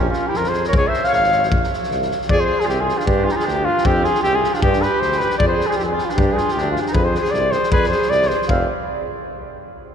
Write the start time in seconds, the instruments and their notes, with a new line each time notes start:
Already playing: cornet G4
0.08 clarinet C#4, cornet F4
0.13 snare
0.27 clarinet E4, cornet G4
0.34 tuba F2, clarinet F4, cornet A#4, snare
0.44 snare
0.48 clarinet G#4, cornet C5
0.53 snare
0.64 clarinet A#4, snare
0.68 cornet C#5
0.73 tuba C#2, cornet C#5, kick
0.77 clarinet G#4
0.87 clarinet C5, cornet E5
0.93 snare
1.04 cornet F5, snare
1.08 clarinet C#5
1.12 tuba G#1, clarinet C#5, cornet F5, snare
1.23 snare
1.32 snare
1.43 snare
1.51 tuba A#1, kick
1.64 snare
1.73 snare
1.83 snare
1.90 tuba C2, snare
2.02 snare
2.11 snare
2.22 snare
2.28 tuba F2, clarinet G#4, cornet D5, kick
2.40 cornet C5
2.45 clarinet G#4
2.60 cornet G#4, snare
2.65 tuba C2, clarinet F4, cornet G4, snare
2.73 clarinet C4
2.80 clarinet F4, cornet G#4
2.89 snare
2.98 clarinet D4, cornet F4, snare
3.06 tuba G2, clarinet D4, cornet G4, kick
3.24 clarinet F4, cornet G#4
3.29 clarinet D#4, cornet G4, snare
3.37 clarinet F4, cornet G#4, snare
3.45 tuba D2, clarinet D4, cornet G4, snare
3.64 clarinet D4, cornet F4
3.78 snare
3.85 tuba F2, clarinet C4, cornet G4, kick
4.04 clarinet F4, cornet G#4, snare
4.14 snare
4.22 tuba C2, clarinet C4, cornet G4, snare
4.34 clarinet F4, cornet G#4
4.44 snare
4.54 clarinet D4, cornet F4, snare
4.62 tuba G2, clarinet D4, cornet G4, kick
4.73 snare
4.82 clarinet G4, cornet B4, snare
5.00 tuba D2, clarinet G4, cornet C5, snare
5.12 snare
5.18 cornet B4, snare
5.22 clarinet G4
5.30 snare
5.38 tuba F2, clarinet G#4, cornet D5, kick
5.48 cornet C5
5.53 clarinet G#4
5.61 snare
5.66 cornet G#4
5.71 clarinet F4, snare
5.77 tuba F2, cornet G4, snare
5.81 clarinet C4, cornet G#4
5.93 clarinet F4
5.98 snare
6.05 cornet F4
6.09 clarinet D4, cornet G4, snare
6.17 tuba G2, clarinet D4, kick
6.33 cornet G#4
6.37 clarinet F4, snare
6.48 cornet G4, snare
6.56 tuba D2, clarinet D4, snare
6.71 cornet F4
6.76 clarinet D4, snare
6.82 cornet G4
6.86 clarinet D#4, snare
6.92 tuba F2, clarinet G#4, cornet B4, kick
7.04 cornet C5
7.09 clarinet G#4
7.15 cornet C5, snare
7.21 clarinet G#4, snare
7.31 tuba C2, clarinet G#4, cornet D5, snare
7.51 clarinet G#4, cornet C5, snare
7.63 snare
7.72 tuba F2, clarinet G#4, cornet B4, kick
7.83 snare
7.89 clarinet G#4, cornet C5, snare
8.02 snare
8.09 tuba C2, clarinet G#4, cornet D5, snare
8.22 snare
8.28 cornet C5, snare
8.33 clarinet G#4
8.42 snare
8.48 tuba F1, clarinet C4, cornet F5, kick